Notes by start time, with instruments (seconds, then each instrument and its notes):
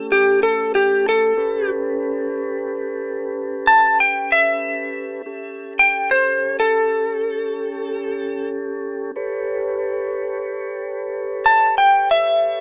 Already playing: tonewheel organ A3 C#4 G4 A4
0.12 electric slide guitar G4
0.43 electric slide guitar A4
0.75 electric slide guitar G4
1.09 electric slide guitar A4
1.37 tonewheel organ C#4 G4 A4 B4
3.67 electric slide guitar A5
4.00 electric slide guitar G5
4.32 electric slide guitar E5
5.26 tonewheel organ C#4 G4 A4
5.79 electric slide guitar G5
6.11 electric slide guitar C5
6.60 electric slide guitar A4
9.16 tonewheel organ G4 A4 B4 C#5
11.46 electric slide guitar A5
11.78 electric slide guitar G5
12.11 electric slide guitar E5